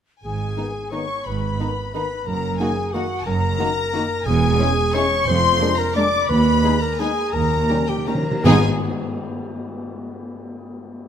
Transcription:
0.24 0.52 G#1 soft
0.24 0.52 G#2 soft
0.24 0.94 G#4 soft
0.24 0.89 G#5 medium
0.57 0.66 D#3 soft
0.57 0.71 D#3 soft
0.57 0.66 B3 soft
0.57 0.71 B3 soft
0.57 0.65 D#4 soft
0.92 1.01 D#3 soft
0.92 1.05 D#3 soft
0.92 1.01 B3 soft
0.92 1.05 B3 soft
0.92 1.00 D#4 soft
0.92 1.28 C#5 medium
0.92 1.27 C#6 medium
0.92 1.26 C#6 medium
1.26 1.54 G#1 medium
1.26 1.54 G#2 medium
1.26 1.94 B4 medium
1.26 1.92 B5 soft
1.26 1.93 B5 medium
1.60 1.72 D#3 soft
1.60 1.68 D#3 soft
1.60 1.72 B3 soft
1.60 1.68 B3 soft
1.60 1.68 D#4 soft
1.94 2.03 D#3 soft
1.94 2.07 D#3 soft
1.94 2.03 B3 soft
1.94 2.07 B3 soft
1.94 2.03 D#4 soft
1.94 2.29 B4 medium
1.94 2.26 B5 medium
1.94 2.27 B5 medium
2.26 2.55 F#1 medium
2.26 2.55 F#2 medium
2.26 2.61 A#4 medium
2.26 2.60 A#5 medium
2.60 2.68 D#3 soft
2.60 2.73 D#3 soft
2.60 2.68 A#3 medium
2.60 2.73 A#3 soft
2.60 2.68 D#4 soft
2.60 2.68 F#4 medium
2.60 2.95 G#4 medium
2.60 2.94 G#5 medium
2.93 3.05 D#3 medium
2.93 3.02 D#3 medium
2.93 3.05 A#3 medium
2.93 3.03 A#3 medium
2.93 3.03 D#4 soft
2.93 3.26 F#4 medium
2.93 3.03 F#4 medium
2.93 3.25 F#5 medium
2.93 3.26 F#5 medium
3.26 3.54 F#1 medium
3.26 3.54 F#2 medium
3.26 4.28 A#4 medium
3.26 3.96 A#5 medium
3.26 4.26 A#5 loud
3.59 3.72 D#3 medium
3.59 3.68 D#3 medium
3.59 3.72 A#3 medium
3.59 3.67 A#3 medium
3.59 3.67 D#4 medium
3.59 3.67 F#4 medium
3.93 4.05 D#3 medium
3.93 4.03 D#3 medium
3.93 4.05 A#3 medium
3.93 4.02 A#3 medium
3.93 4.02 D#4 medium
3.93 4.02 F#4 medium
4.26 4.54 E1 medium
4.26 4.54 E2 medium
4.26 4.96 G#4 medium
4.26 4.93 G#5 loud
4.26 4.93 G#5 medium
4.59 4.72 G#3 medium
4.59 4.68 G#3 medium
4.59 4.72 C#4 medium
4.59 4.68 C#4 medium
4.59 4.68 E4 medium
4.59 4.68 G#4 medium
4.94 5.06 G#3 medium
4.94 5.02 G#3 medium
4.94 5.02 C#4 medium
4.94 5.06 C#4 medium
4.94 5.03 E4 medium
4.94 5.03 G#4 medium
4.94 5.27 C#5 medium
4.94 5.27 C#6 loud
4.94 5.27 C#6 medium
5.27 5.55 F1 medium
5.27 5.55 F2 medium
5.27 5.81 C5 medium
5.27 5.79 C6 loud
5.27 5.78 C6 medium
5.60 5.73 G#3 medium
5.60 5.69 G#3 medium
5.60 5.68 A#3 medium
5.60 5.73 D4 medium
5.60 5.69 D4 medium
5.60 5.68 A#4 medium
5.78 5.96 A#4 medium
5.78 5.96 A#5 medium
5.78 5.96 A#5 loud
5.95 6.08 G#3 medium
5.95 6.04 G#3 medium
5.95 6.04 A#3 medium
5.95 6.08 D4 medium
5.95 6.04 D4 medium
5.95 6.05 A#4 medium
5.95 6.29 D5 medium
5.95 6.29 D6 medium
5.95 6.30 D6 loud
6.29 6.58 D#2 medium
6.29 6.79 D#3 medium
6.29 6.81 B4 medium
6.29 6.83 B5 medium
6.29 6.82 B5 loud
6.64 6.72 G#3 medium
6.64 6.77 G#3 medium
6.64 6.72 B3 medium
6.64 6.77 D#4 medium
6.64 6.72 D#4 medium
6.64 6.72 G#4 medium
6.82 7.02 A#4 medium
6.82 7.00 A#5 medium
7.00 7.12 G#3 medium
7.00 7.08 G#3 medium
7.00 7.08 B3 medium
7.00 7.12 D#4 medium
7.00 7.08 D#4 medium
7.00 7.35 G#4 medium
7.00 7.08 G#4 medium
7.00 7.33 G#5 medium
7.00 7.34 G#5 medium
7.33 7.63 D#2 medium
7.33 7.40 D#3 soft
7.33 7.90 A#4 medium
7.33 7.87 A#5 loud
7.33 7.88 A#5 medium
7.41 7.48 D#3 soft
7.49 7.55 D#3 soft
7.56 7.63 D#3 soft
7.64 7.72 D#3 soft
7.69 7.80 D#3 medium
7.69 7.84 G3 medium
7.69 7.77 A#3 medium
7.69 7.77 C#4 medium
7.69 7.84 C#4 medium
7.69 7.77 D#4 medium
7.69 7.77 G4 medium
7.81 7.88 D#3 medium
7.88 7.97 D#3 medium
7.88 8.10 G4 medium
7.88 8.07 G5 medium
7.88 8.08 G5 medium
7.98 8.05 D#3 medium
8.06 8.14 D#3 medium
8.06 8.22 G3 medium
8.06 8.15 A#3 soft
8.06 8.15 C#4 soft
8.06 8.21 C#4 medium
8.06 8.16 D#4 medium
8.06 8.15 G4 medium
8.06 8.45 A#4 medium
8.06 8.45 A#5 medium
8.15 8.21 D#3 medium
8.23 8.30 D#3 medium
8.31 8.39 D#3 medium
8.44 8.65 G#1 medium
8.44 8.62 G#2 loud
8.44 8.65 G#2 medium
8.44 8.65 G#3 medium
8.44 8.60 G#3 medium
8.44 8.65 B3 medium
8.44 8.60 B3 medium
8.44 8.65 D#4 medium
8.44 8.60 G#4 medium
8.44 8.65 G#4 medium
8.44 8.65 G#5 loud
8.44 8.65 G#5 medium
8.44 tam-tam medium

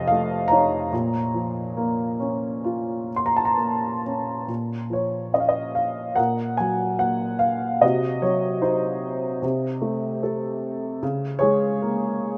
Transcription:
0.00 0.88 F2 medium
0.00 0.89 C3 soft
0.00 0.11 D#5 medium
0.00 0.08 F5 medium
0.00 0.89 A5 medium
0.08 0.51 F5 medium
0.12 0.90 A3 soft
0.48 3.13 C#5 medium
0.48 3.11 A#5 medium
0.52 0.92 D#4 medium
0.93 4.45 A#2 medium
1.34 3.06 F3 soft
1.77 3.55 A#3 medium
2.20 4.01 C#4 medium
2.65 4.45 F4 medium
3.16 3.27 C6 medium
3.26 3.37 A#5 medium
3.36 3.47 A5 medium
3.45 3.57 A#5 medium
3.58 4.46 A#3 soft
4.05 4.48 C#4 soft
4.48 6.13 A#2 soft
4.90 6.14 F3 soft
4.90 5.32 C#5 medium
5.32 6.15 C#4 soft
5.32 5.41 D#5 medium
5.40 5.47 F5 medium
5.49 5.77 D#5 medium
5.75 6.19 F5 medium
6.15 7.79 A#2 medium
6.15 7.78 A#4 medium
6.15 6.55 F#5 medium
6.57 7.79 F#3 soft
6.57 6.97 G#5 medium
6.99 7.80 A#3 soft
6.99 7.42 F#5 medium
7.39 7.83 F5 medium
7.81 9.38 C3 medium
7.81 9.39 F#4 medium
7.81 8.24 D#5 medium
8.22 9.39 F#3 soft
8.22 8.60 C#5 medium
8.61 9.40 D#4 soft
8.61 9.38 C5 medium
9.42 10.98 C3 medium
9.82 10.98 A3 medium
10.23 11.00 A4 soft
11.03 12.38 C#3 medium
11.39 12.38 G#4 medium
11.39 12.38 C#5 medium
11.43 12.38 G#3 medium
11.82 12.38 A#3 medium

